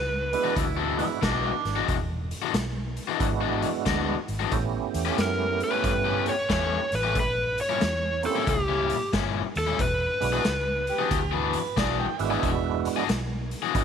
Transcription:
Already playing: C#2 B4
0.33 G#3 B3 D4 E4 F#4 B4, closed hi-hat
0.44 E3 G#3 D4 F#4
0.56 D2 E4, kick, closed hi-hat
0.77 E3 G#3 D4 F#4
0.97 G#3 B3 D4 E4 F#4, closed hi-hat
1.22 B1 E3 G#3 D4 F#4, kick, snare, closed hi-hat
1.65 G#1, snare, closed hi-hat
1.76 E3 G#3 D4 F#4
1.89 E1, kick, closed hi-hat
2.31 closed hi-hat
2.42 E3 G#3 D4 F#4
2.53 B1, muted overdriven electric guitar stroke, snare, closed hi-hat
2.97 closed hi-hat
3.08 E3 G#3 D4 F#4
3.19 G#1 G#3 B3 D4 E4 F#4, kick, closed hi-hat
3.41 E3 G#3 D4 F#4
3.62 closed hi-hat
3.86 D2 E3 G#3 D4 F#4, kick, snare, closed hi-hat
4.28 G#1, closed hi-hat
4.39 E3 G#3 D4 F#4
4.51 A1 A3 B3 C#4 E4 G4, kick, closed hi-hat
4.94 E2, closed hi-hat
5.05 A3 C#4 G4 B4
5.17 F#2, muted overdriven electric guitar stroke, snare, closed hi-hat
5.22 A#4
5.60 B4, closed hi-hat
5.71 A3 C#4 G4 B4
5.84 G2, kick, closed hi-hat
6.05 A3 C#4 G4 B4
6.26 C#5, closed hi-hat
6.49 E2 A3 C#4 G4 B4 C#5, kick, snare, closed hi-hat
6.92 A1 B4, snare, closed hi-hat
7.03 A3 C#4 G4 B4
7.15 A#1, kick, closed hi-hat
7.20 B4
7.58 C#5, closed hi-hat
7.69 A#2 G3 C#4 E4
7.81 E2, muted overdriven electric guitar stroke, snare, closed hi-hat
8.23 A#3 C4 C#4 E4 G4 A4, closed hi-hat
8.35 A#2 G3 C#4 E4
8.47 C#2 G4, kick, closed hi-hat
8.68 A#2 G3 C#4 E4
8.90 closed hi-hat
9.13 G1 A#2 G3 C#4 E4, kick, snare, closed hi-hat
9.55 D#2 A4, snare, closed hi-hat
9.67 A#2 G3 C#4 E4
9.79 E1 B4, kick, closed hi-hat
10.20 B1 G#3 B3 D4 E4 F#4, closed hi-hat
10.32 E3 D4 F#4 G#4
10.44 C#2, muted overdriven electric guitar stroke, snare, closed hi-hat
10.87 closed hi-hat
10.91 G4
10.99 E3 D4 F#4 G#4
11.11 D2, kick, closed hi-hat
11.31 E3 D4 F#4 G#4 B4
11.53 closed hi-hat
11.77 B1 E3 D4 F#4 G#4 D5, kick, snare, closed hi-hat
11.99 G5
12.19 G#1 G#3 B3 D4 E4 F#4 E5, closed hi-hat
12.30 E3 D4 F#4 G#4
12.43 E1, kick, closed hi-hat
12.85 closed hi-hat
12.96 E3 D4 F#4 G#4
13.09 B1, muted overdriven electric guitar stroke, snare, closed hi-hat
13.51 closed hi-hat
13.62 E3 D4 F#4 G#4
13.74 G#1 G#3 B3 D4 E4 F#4, kick, closed hi-hat

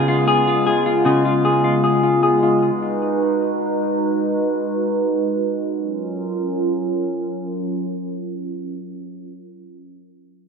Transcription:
Already playing: C#3 G#3 B3 F4 G#4
0.08 F4
0.28 G#4
0.47 F4
0.67 G#4
0.86 F4
1.05 C#3 G#4
1.25 F4
1.45 G#4
1.64 F4
1.84 G#4
2.03 F4
2.23 G#4
2.43 F4
2.63 D#4 F#4 B4
5.73 F#3 C#4 F4 A#4

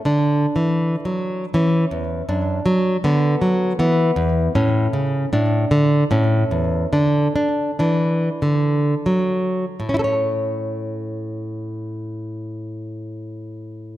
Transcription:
0.05 D3 D4
0.56 E3
1.05 F#3
1.54 E3 C#4
1.91 E2
2.29 F#2 D4
2.66 F#3
3.04 D3 B3
3.42 F#3
3.79 E3 B3
4.16 E2
4.55 A2 C#4
4.93 C#3
5.33 A2 D4
5.71 D3
6.11 A2 C#4
6.51 E2
6.93 D3 D4
7.36 D4
7.79 E3 D4
8.42 D3
9.06 F#3
9.80 A2
9.89 C#4
9.94 E4
9.99 A4
10.04 C#5

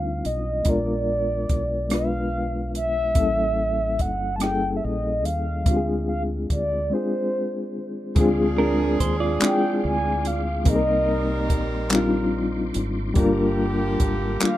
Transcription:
Already playing: D2 G3 C4 D4 D#4 F4 A#4 F5
0.25 B1 D#5, closed hi-hat
0.63 A#1 G#3 B3 D4, kick, closed hi-hat
0.67 F4 A#4 D5
1.49 B1, kick, closed hi-hat
1.89 G#3 B3 D4 F4, cross-stick, closed hi-hat
1.94 B4 F5
2.75 E5, closed hi-hat
3.14 A1 G3 A#3 C#4 E4, kick, closed hi-hat
3.19 A4
3.99 G1 F#5, kick, closed hi-hat
4.36 G3 A5
4.40 A#3 C#4 E4 G#4 G5, cross-stick, closed hi-hat
4.51 A4
4.76 E5
4.84 A#1 D#5
5.25 D#2 F5, closed hi-hat
5.64 D2 G#3 C4 D4, kick, closed hi-hat
5.69 F4 G4
5.76 G#4
6.09 F5
6.50 D2 D5, kick, closed hi-hat
6.90 G#3 C4 D4 C5
6.94 F4 G#4
8.15 D2 F3 G#3 C4 D4 G#4 F5 C6 D6, kick, closed hi-hat
8.19 F4 G#4
8.58 D4 A#4
9.00 D#2 C5, kick, closed hi-hat
9.20 F4 D5
9.39 G#3 C4 D4 E4, muted fingered electric bass stroke, clap, closed hi-hat
9.44 G#4 G5
9.50 F4
9.85 D2 G#5
10.25 F5, closed hi-hat
10.64 C2 G3 A#3 C4 D#4 A#4 C5 C6, kick, closed hi-hat
10.68 D#4 G#4 D#5
10.76 A#4
11.50 A#1, kick, closed hi-hat
11.90 G3 C4 D4, clap, closed hi-hat
11.94 D#4 F4
12.74 G#1, closed hi-hat
13.14 G1 D3 G3 A#3 D4 F4 G4 F5 A#5, kick, closed hi-hat
13.20 A#4
14.00 G#1, kick, closed hi-hat
14.39 G3 A3 D4 F4, muted fingered electric bass stroke, clap, closed hi-hat
14.44 A#3 G4 F5

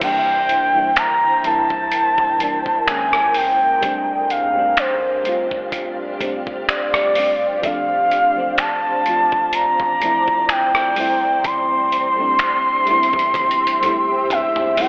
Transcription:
0.00 C2 E3 G3 A#3 E4 A#4 C5 G5, kick, closed hi-hat, crash
0.05 D4
0.49 closed hi-hat
0.73 E3 G3 A#3
0.78 D4
0.96 A#5, finger snap, closed hi-hat
1.43 E3 G3 A#3 A5, closed hi-hat
1.48 E4
1.70 C2, kick
1.92 closed hi-hat
2.18 C2, kick
2.38 E3 G3 A#3, closed hi-hat
2.43 D4
2.66 F#1, kick
2.86 D#3 G#3 A#3 G#5, finger snap, closed hi-hat
2.90 C#4
3.13 cross-stick
3.34 G5, open hi-hat
3.81 F1 G3 A3 C4 D4 G4 C5 F5, kick, closed hi-hat
3.86 D4
4.30 F5, closed hi-hat
4.54 G3 A3 C4
4.59 D4
4.77 C5, finger snap, closed hi-hat
5.24 G3 A3 C4, closed hi-hat
5.28 F4
5.51 F1, kick
5.72 kick, closed hi-hat
6.19 F1 G3 A3 C4, kick, closed hi-hat
6.24 D4
6.47 kick
6.69 D5, finger snap, closed hi-hat
6.94 F1, kick, cross-stick
7.15 G3 A3 C4, open hi-hat
7.19 D4
7.62 F1 F3 A3 C4 D5 F5, kick, closed hi-hat
7.67 D4
8.11 closed hi-hat
8.35 F3 A3 C4
8.40 D4
8.58 A5, finger snap, closed hi-hat
9.05 F3 A3 C4, closed hi-hat
9.09 F4
9.32 F1, kick
9.53 A#5, closed hi-hat
9.80 A1, kick
10.00 F3 A3 C4, closed hi-hat
10.05 E4
10.28 F1, kick
10.49 G5, finger snap, closed hi-hat
10.75 cross-stick
10.96 G3 A3 C4 G4 E5, open hi-hat
11.00 E4
11.44 A1 C6, kick, closed hi-hat
11.92 closed hi-hat
12.16 G3 A3 C4
12.21 D4
12.39 finger snap, closed hi-hat
12.86 G3 A3 B3, closed hi-hat, open hi-hat
12.91 E4
12.95 C4
13.03 closed hi-hat
13.13 A1, kick
13.19 closed hi-hat
13.34 A1, kick, closed hi-hat, high tom
13.51 closed hi-hat
13.67 closed hi-hat
13.81 G3 A3 C4, closed hi-hat, mid tom
13.86 E4
14.30 G1 E5, closed hi-hat, mid tom
14.56 mid tom
14.76 G3 A3 C4 G5, floor tom, open hi-hat
14.81 E4

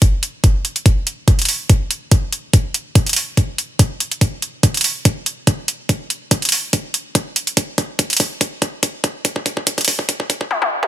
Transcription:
0.02 kick, closed hi-hat
0.23 closed hi-hat
0.44 kick, closed hi-hat
0.65 closed hi-hat
0.76 closed hi-hat
0.86 kick, closed hi-hat
1.07 closed hi-hat
1.28 kick, closed hi-hat
1.39 closed hi-hat
1.42 closed hi-hat
1.45 closed hi-hat, open hi-hat
1.70 kick, closed hi-hat
1.91 closed hi-hat
2.12 kick, closed hi-hat
2.33 closed hi-hat
2.53 kick, closed hi-hat
2.74 closed hi-hat
2.95 kick, closed hi-hat
3.06 closed hi-hat
3.09 closed hi-hat
3.13 closed hi-hat, open hi-hat
3.37 kick, closed hi-hat
3.58 closed hi-hat
3.79 kick, closed hi-hat
4.00 closed hi-hat
4.12 closed hi-hat
4.21 kick, closed hi-hat
4.42 closed hi-hat
4.63 kick, closed hi-hat
4.74 closed hi-hat
4.77 closed hi-hat
4.81 closed hi-hat, open hi-hat
5.05 kick, closed hi-hat
5.26 closed hi-hat
5.47 kick, closed hi-hat
5.68 closed hi-hat
5.89 kick, closed hi-hat
6.10 closed hi-hat
6.31 kick, closed hi-hat
6.42 closed hi-hat
6.45 closed hi-hat
6.49 closed hi-hat, open hi-hat
6.73 kick, closed hi-hat
6.94 closed hi-hat
7.15 kick, closed hi-hat
7.36 closed hi-hat
7.47 closed hi-hat
7.57 kick, closed hi-hat
7.78 kick, closed hi-hat
7.99 kick, closed hi-hat
8.10 closed hi-hat
8.13 closed hi-hat
8.17 kick, closed hi-hat, open hi-hat
8.41 kick, closed hi-hat
8.62 kick, closed hi-hat
8.83 kick, closed hi-hat
9.04 kick, closed hi-hat
9.25 kick, closed hi-hat
9.36 kick
9.46 kick, closed hi-hat
9.57 kick
9.67 kick, closed hi-hat
9.78 kick, closed hi-hat
9.81 closed hi-hat
9.85 kick, closed hi-hat, open hi-hat
9.99 kick
10.09 kick, closed hi-hat
10.20 kick
10.30 kick, closed hi-hat
10.41 kick
10.51 high tom
10.62 high tom
10.83 mid tom

